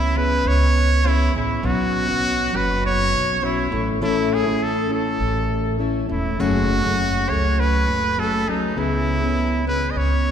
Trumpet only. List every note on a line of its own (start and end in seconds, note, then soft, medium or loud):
0.00 0.19 E4 loud
0.17 0.49 B4 loud
0.48 1.09 C#5 loud
1.07 1.36 E4 loud
1.36 1.67 E4 medium
1.66 2.58 F#4 loud
2.56 2.84 B4 loud
2.86 3.46 C#5 loud
3.44 3.88 E4 medium
4.03 4.35 E4 loud
4.33 4.65 G#4 loud
4.63 4.92 A4 medium
4.93 5.77 A4 medium
6.12 6.42 E4 medium
6.40 7.31 F#4 loud
7.29 7.61 C#5 loud
7.60 8.21 B4 loud
8.20 8.51 A4 loud
8.49 8.80 D#4 medium
8.79 9.67 E4 loud
9.68 9.92 B4 loud
9.91 9.99 D#5 medium
9.97 10.31 C#5 loud